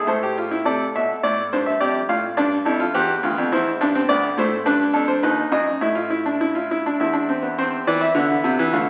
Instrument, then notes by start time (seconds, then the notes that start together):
grand piano
0.07 A2 A4 C5
0.23 G4
0.38 F4
0.51 E4
0.65 C3 A4 D5
0.96 B2 E5
1.23 A2 D5
1.53 G2 C5
1.66 E5
1.80 F2 G4 D5
2.09 A2 F4 F5
2.37 G2 D4 D5
2.65 F2 E4 A4
2.80 F4
2.94 E2 G4 B4
3.23 D2 F4
3.38 F2
3.52 E2 E4 C5
3.81 G2 D4
3.95 C4
4.09 D2 B3 D5
4.38 A2 A3 C5
4.66 G2 D4 B4
4.93 F2 A4
5.08 C5
5.23 D#2 D#4 B4
5.52 F#2 D#5
5.81 A2 E4 E5
5.95 F4
6.10 E4
6.26 D4
6.41 E4
6.55 F4
6.71 E4
6.86 D4
7.00 E2 E4 E5
7.13 D4
7.29 C4
7.42 B3
7.58 E2 C4 C5
7.87 E3 D5
8.01 E5
8.15 D3 B3
8.44 C3
8.59 E3
8.73 D3 A3 F5